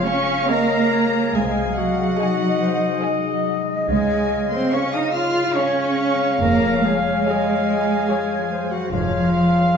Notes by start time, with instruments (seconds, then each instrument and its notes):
Already playing: harp C#3 G#3 C#4 F4 C#5, viola section G#4, french horn section G#4 C#5, trumpet F5
0.03 cello section C#4, clarinet C#5, flute F5, violin section C#6
0.21 harp F4
0.47 harp G#3, cello section A#3, viola section G#4 C#5, clarinet A#4, flute D#5, violin section F5 A#5
0.78 harp C#4
0.91 flute C#5
1.08 harp G#3
1.32 double bass section C2, cello section G#3, french horn section D#5, trumpet D#5, flute F5, violin section G#5
1.36 harp C3, clarinet G#4
1.64 harp F#3
1.76 cello section F#3, clarinet F#4, violin section F#5
1.93 harp G#3
2.18 harp D#4, viola section G#4 D#5, flute D#5, violin section G#5
2.49 harp D#5
2.61 flute C5
2.77 harp D#4
3.01 harp G#3, viola section G#4 D#5, flute D#5, violin section G#5
3.33 harp F#3
3.61 harp G#3
3.87 double bass section C#2, harp C#3, cello section G#3, clarinet G#4, french horn section G#4 C#5, trumpet F5, violin section G#5
4.20 harp C#4
4.47 harp G#3
4.53 cello section C4, clarinet C5, violin section C6
4.72 cello section C#4, harp F4, viola section G#4 C#5, clarinet C#5, violin section F5 C#6, flute F5
4.93 cello section D#4, clarinet D#5, violin section D#6
5.03 harp C#5
5.13 cello section F4, clarinet F5, violin section F6
5.30 harp F4
5.56 harp G#3, cello section C#4, viola section G#4 C#5, clarinet C#5, flute C#5, violin section F5 C#6
5.85 harp C#4
6.00 flute F5
6.14 harp G#3
6.42 double bass section F1, harp F2, cello section A#3, clarinet A#4, violin section A#5
6.71 harp F3
6.84 cello section G#3, clarinet G#4, violin section G#5
6.99 harp G#3
7.25 viola section G#4 C#5, harp G#4, flute D#5, violin section G#5
7.55 harp C#5
7.83 harp G#4
8.09 harp G#3, viola section G#4 C#5, flute C#5, violin section G#5
8.38 harp F3
8.52 flute C5
8.66 harp G#3
8.71 cello section F#3, clarinet F#4, violin section F#5
8.91 double bass section F1, harp F2, cello section F3, clarinet F4, french horn section G#4 C#5, flute C#5, trumpet F5, violin section F5
9.22 harp F3
9.34 flute F5
9.49 harp G#3